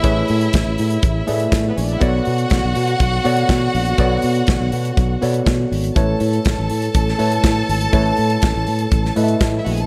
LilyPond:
<<
  \new Staff \with { instrumentName = "Violin section" } { \time 4/4 \key a \major \tempo 4 = 122 <e' e''>2.~ \tuplet 3/2 { <e' e''>16 r16 <b b'>16 <cis' cis''>16 <d' d''>16 <e' e''>16 } | <fis' fis''>1~ | <fis' fis''>2.~ <fis' fis''>8 r8 | <a' a''>1~ |
<a' a''>2.~ \tuplet 3/2 { <a' a''>16 r16 <e' e''>16 <fis' fis''>16 <gis' gis''>16 <a' a''>16 } | }
  \new Staff \with { instrumentName = "Tine electric piano" } { \time 4/4 \key a \major <a e' gis' b' cis''>4. r4 <a e' gis' b' d'' e''>4 r8 | <b fis' a' cis'' d''>4. r4 <b fis' a' cis'' d''>4 r8 | <b fis' a' cis'' d''>4. r4 <b fis' a' cis'' d''>4 r8 | <a e' a' b' cis''>4. r4 <a e' a' b' cis''>4 r8 |
<a e' a' b' cis''>4. r4 <a e' a' b' dis'' e''>4 r8 | }
  \new Staff \with { instrumentName = "Fingered electric bass" } { \clef bass \time 4/4 \key a \major a,,8 a,8 a,,16 a,,16 a,8 a,,8 a,8 a,8 bes,,8 | b,,8 b,8 b,,16 b,,16 b,8 b,,8 b,8 b,8 bes,,8 | b,,8 b,8 b,,16 b,,16 b,8 b,,8 b,8 b,8 gis,,8 | a,,8 a,8 a,,16 a,,16 a,8 a,,8 a,8 a,8 gis,,8 |
a,,8 a,8 a,,16 a,,16 a,8 a,,8 a,8 a,8 bes,,8 | }
  \new DrumStaff \with { instrumentName = "Drums" } \drummode { \time 4/4 <hh bd>8 hho16 hh16 <hh bd sn>8 hho16 hh16 <hh bd>8 hho16 hh16 <hh bd sn>8 hho16 hh16 | <hh bd>8 hho16 hh16 <hh bd sn>8 hho16 hh16 <hh bd>8 hho16 hh16 <hh bd sn>8 hho16 hh16 | <hh bd>8 hho16 hh16 <hh bd sn>8 hho16 hh16 <hh bd>8 hho16 hh16 <hh bd sn>8 hho16 hh16 | <hh bd>8 hho16 hh16 <hh bd sn>8 hho16 hh16 <hh bd>16 sn16 hho16 hh16 <hh bd sn>8 hho16 hh16 |
<hh bd>8 hho16 hh16 <hh bd sn>8 hho16 hh16 <hh bd>16 sn16 hho16 hh16 <hh bd sn>8 hho16 hh16 | }
>>